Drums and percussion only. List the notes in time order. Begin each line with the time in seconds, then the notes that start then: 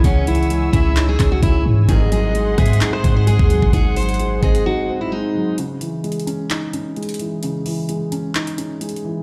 0.04 kick, closed hi-hat
0.27 closed hi-hat
0.35 closed hi-hat
0.43 closed hi-hat
0.50 closed hi-hat
0.73 kick, closed hi-hat
0.96 clap, closed hi-hat
1.20 kick, clap, closed hi-hat
1.43 kick, closed hi-hat
1.89 kick, closed hi-hat
2.12 closed hi-hat
2.35 closed hi-hat
2.58 kick, cross-stick, closed hi-hat
2.66 closed hi-hat
2.73 closed hi-hat
2.81 clap, closed hi-hat
2.93 cross-stick
3.04 kick, closed hi-hat
3.27 closed hi-hat
3.39 kick
3.50 closed hi-hat
3.62 kick
3.73 kick, closed hi-hat
3.96 closed hi-hat, open hi-hat
4.03 closed hi-hat
4.09 closed hi-hat
4.14 closed hi-hat
4.20 closed hi-hat
4.43 kick, closed hi-hat
4.55 closed hi-hat
5.58 closed hi-hat
5.81 closed hi-hat
6.04 closed hi-hat
6.12 closed hi-hat
6.20 closed hi-hat
6.27 closed hi-hat
6.50 clap, closed hi-hat
6.73 closed hi-hat
6.96 closed hi-hat
7.03 closed hi-hat
7.09 closed hi-hat
7.14 closed hi-hat
7.19 closed hi-hat
7.43 closed hi-hat
7.66 open hi-hat
7.89 closed hi-hat
8.12 closed hi-hat
8.35 clap, closed hi-hat
8.47 closed hi-hat
8.58 closed hi-hat
8.81 closed hi-hat
8.89 closed hi-hat
8.96 closed hi-hat